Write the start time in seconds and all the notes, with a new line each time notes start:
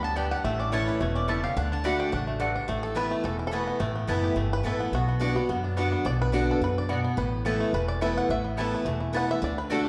Already playing: D2 F#2 G3 D4
0.03 B3 A5
0.16 G2 B3 D4 G4 D5 G5
0.31 G4 F#5
0.44 A1 A2 A3 E5
0.59 C#4 D5
0.72 E3 A3 C#4 E4 C#5 A5
0.88 E4 B4
1.01 E1 B2 A3 C#5
1.15 C#4 D5
1.28 C#3 A3 E4 C#5 E5 A5
1.43 G4 F5
1.57 D2 D3 D4 F#5
1.72 D4 A5
1.84 D3 A3 D4 F#4 D5 F#5 B5
2.00 D4 G5
2.12 A1 C#3 D4 F#5
2.27 A3
2.40 G2 D3 A3 F#4 D5 F#5
2.55 D4
2.68 A1 A2 A3
2.83 A4
2.95 E3 A3 B3 E4 B4 A5
3.11 A3
3.24 E1 E2 A4
3.39 E4
3.47 A4
3.51 E3 A3 B3 E4 F#4 B4 A5
3.67 B3
3.80 A1 A2 A3
3.95 B3
4.07 F#1 E3 A3 B3 E4 B4 A5
4.24 G4
4.36 G1 E2 A3
4.53 B4
4.63 A1 E3 A3 B3 E4 A4 B4 A5
4.79 B3 E4
4.92 B1 B2 F#4
5.08 B3
5.20 D3 B3 D4 F#4 D5 F#5
5.35 B3 D4 F#4
5.49 F#2 B3
5.64 D4
5.77 D3 B3 D4 F#4 D5 F#5
5.92 B3
6.05 B1 B2 D5
6.22 B4
6.32 D3 B3 D4 F#4 D5 F#5
6.51 A4
6.61 F#2 C#3 B4
6.78 D5
6.89 B2 B3 F#4 D5 F#5
7.04 B3
7.17 A1 A2 B4
7.45 E3 A3 B3 E4 A4 B4 A5
7.60 A3
7.73 E1 E2 B4
7.88 D5
8.01 E3 A3 B3 E4 B4 E5 A5
8.18 F#5
8.29 A1 A2 E5
8.44 B3
8.57 E3 A3 B3 E4 A4 B4 A5
8.75 B4
8.85 E1 E2 A3
9.00 E4
9.13 E3 A3 B3 E4 B4 F#5 A5
9.28 B3 E4 E5
9.42 D2 D3 D5
9.58 B4
9.70 D3 A3 D4 F#4 A4 D5 F#5
9.85 D4 F#4